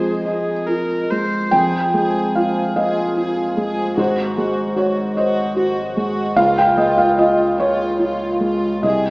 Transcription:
Already playing: F1 F2 G#3 F4 G#4 C5 D#5
0.24 G#4 D#5
0.67 F4 A#4
1.11 G#3 C5
1.51 F1 F2 G#3 F4 G#4 C5 G5
1.94 G#3 G#4
2.35 F4 G#4 F5
2.76 G#4 D#5 F5
3.17 F4 G#4
3.57 G#3 G#4
3.97 G#1 G#2 F#4 C5 D#5
4.37 G#3 F#4
4.76 F#4 C#5
5.16 F#4 C5 D#5
5.56 F#4
5.97 G#3 F#4
6.36 C#2 G#3 F4 F5
6.58 G5
6.77 G#3 F4 D#5
6.98 F5
7.18 F4 D#5
7.58 F4 C#5 D#5
7.99 F4
8.40 G#3 F4
8.82 C2 G#4 D#5 G5

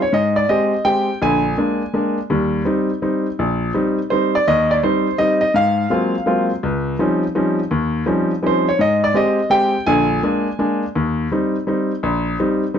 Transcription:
0.02 C#5
0.13 G#2 D#5
0.36 D5
0.49 G#3 C4 G4 D#5
0.85 G#3 C4 G4 G5
1.22 A#1 D3 G#5
1.58 G#3 A#3 D4
1.94 G#3 A#3 D4
2.30 D#2 G3
2.65 G3 C4 D#4
3.02 G3 C4 D#4
3.39 A#1
3.74 G3 C4 D#4
4.10 G3 C4 D#4 C5
4.35 D5
4.48 D#2 D#5
4.71 D5
4.83 G3 C4 D#4 C5
5.18 G3 C4 D#4 D#5
5.41 D#5
5.54 G#2 F5
5.90 F#3 G#3 A#3 C4 F4
6.26 F#3 G#3 A#3 C4 F4
6.63 C#2
6.99 F3 G3 C4 C#4 D#4
7.35 F3 G3 C4 C#4 D#4
7.71 D#2
8.06 F3 G3 C4 C#4 D#4
8.43 F3 G3 C4 C#4 D#4
8.47 C5
8.69 C#5
8.79 G#2 D#5
9.04 D5
9.14 G#3 C4 G4 D#5
9.50 G#3 C4 G4 G5
9.86 A#1 D3 G#5
10.23 G#3 A#3 D4
10.59 G#3 A#3 D4
10.95 D#2
11.32 G3 C4 D#4
11.67 G3 C4 D#4
12.03 A#1
12.39 G3 C4 D#4
12.74 G3 C4 D#4

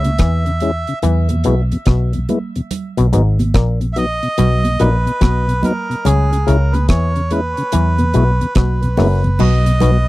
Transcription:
Already playing: C#2 E5
0.04 C#3, closed hi-hat, high conga
0.18 E2 E3, kick, cross-stick, closed hi-hat
0.46 C#3, closed hi-hat
0.60 G#3 C#4 E4, closed hi-hat
0.87 C#3, closed hi-hat
1.02 E2 E3, closed hi-hat, low conga
1.29 E2 B2, closed hi-hat, high conga
1.44 B1 B2 G#3 B3 E4, closed hi-hat
1.72 E2 B2, closed hi-hat
1.86 B1 B2, kick, cross-stick, closed hi-hat
2.13 E2 B2, closed hi-hat
2.29 G#3 B3 E4, closed hi-hat, high conga, low conga
2.56 E2 B2, closed hi-hat
2.71 closed hi-hat, low conga
2.97 B1 B2, closed hi-hat
3.13 G#1 G#2 F#3 B3 D#4, closed hi-hat
3.39 B2, closed hi-hat, high conga
3.54 A#1 A#2, kick, cross-stick, closed hi-hat
3.81 B2, closed hi-hat
3.93 F#3 B3 D#4 E5, closed hi-hat
3.98 D#5
4.23 B2, closed hi-hat
4.38 B1 B2, closed hi-hat, low conga
4.64 B2, closed hi-hat, high conga
4.79 A#1 A#2 F#3 B3 D#4 B4, closed hi-hat
5.06 B2, closed hi-hat
5.21 B1 B2, kick, cross-stick, closed hi-hat
5.48 B2, closed hi-hat
5.62 F#3 B3 D#4 A#4, closed hi-hat, high conga, low conga
5.90 B2, closed hi-hat
6.05 C#2 C#3 G#4, closed hi-hat, low conga
6.32 C#3, closed hi-hat
6.47 C#2 C#3 G#3 C#4 E4 A#4, closed hi-hat
6.72 C#3 B4, closed hi-hat, high conga
6.89 E2 E3 C#5, kick, cross-stick, closed hi-hat
7.16 C#3, closed hi-hat
7.30 G#3 C#4 E4 B4, closed hi-hat, high conga
7.57 C#3, closed hi-hat
7.72 E2 E3, closed hi-hat, low conga
7.98 E2 B2, closed hi-hat, high conga
8.14 B1 B2 G#3 B3 E4, closed hi-hat
8.41 E2 B2, closed hi-hat
8.55 B1 B2 B4, kick, cross-stick, closed hi-hat, high conga
8.83 E2 B2, closed hi-hat
8.97 F#1 F#2 G#3 B3 E4, cross-stick, open hi-hat, high conga, low conga
9.24 E2 B2, closed hi-hat, high conga
9.39 B1 B2 D#5, crash, low conga
9.66 B2, closed hi-hat
9.80 B1 B2 F#3 B3 D#4, closed hi-hat, low conga

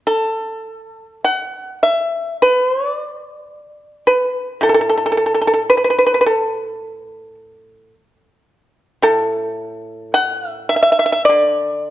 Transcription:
0.07 A4
1.24 F#5
1.83 E5
2.42 B4
2.67 C5
2.80 C#5
2.93 D5
4.07 B4
4.61 A2 A4
4.69 A4
4.74 A4
4.81 A4
4.89 A4
4.97 A4
5.06 A4
5.12 A4
5.17 A4
5.26 A4
5.34 A4
5.41 A4
5.47 A4
5.54 A4
5.70 B4
5.77 B4
5.84 B4
5.90 B4
5.99 B4
6.06 B4
6.14 B4
6.21 B4
6.26 A4
9.02 A2 A4
10.14 F#5
10.49 E5
10.69 E5
10.76 E5
10.83 E5
10.92 E5
10.99 E5
11.06 E5
11.12 E5
11.25 D5
11.29 D3

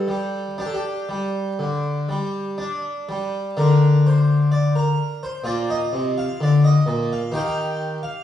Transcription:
Already playing: A4
0.08 G3
0.58 D4 G4
0.66 A4
0.74 G4
1.09 G3
1.59 D3
2.09 G3
2.58 D4
3.09 G3
3.57 D3 D4 A#4
4.07 C5
4.52 D5
4.75 A#4
5.23 C5
5.44 A#2 F4 D5
5.70 D#5
5.93 C3
6.18 F5
6.40 D3 D5
6.64 D#5
6.86 A#2
7.13 F5
7.32 D#3 G4 G5
7.38 F5
7.46 G5
8.03 F5

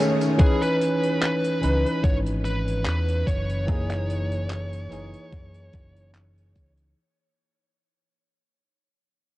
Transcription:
Already playing: D#3 A3 G#4 G#5 C#6 D#6
0.00 C#4 D#4 G#4
0.21 closed hi-hat, tambourine
0.38 E3 C#4 D#4 G#4 B4, kick, closed hi-hat
0.62 B4, closed hi-hat
0.81 closed hi-hat
1.03 closed hi-hat
1.21 B4, clap, closed hi-hat
1.44 closed hi-hat
1.61 C#2 E3 C#4 D#4 B4, closed hi-hat
1.86 closed hi-hat
2.04 G#1 C#5, kick, closed hi-hat
2.26 closed hi-hat
2.45 B4, closed hi-hat
2.68 closed hi-hat
2.85 E2 B4, clap, closed hi-hat
3.09 closed hi-hat
3.27 F#1 C#5, kick, closed hi-hat
3.50 closed hi-hat
3.67 E3 A#3 D#4 G#4, kick, closed hi-hat
3.91 clap, closed hi-hat
4.10 closed hi-hat
4.32 closed hi-hat
4.50 clap, closed hi-hat
4.73 closed hi-hat
4.90 F#1 E3 A#3 D#4 G#4, closed hi-hat
5.14 closed hi-hat
5.33 F#2, kick, closed hi-hat
5.54 closed hi-hat
5.73 F#1, kick, closed hi-hat
5.96 closed hi-hat
6.14 clap, closed hi-hat
6.38 closed hi-hat
6.55 C#2, kick, closed hi-hat
6.77 closed hi-hat

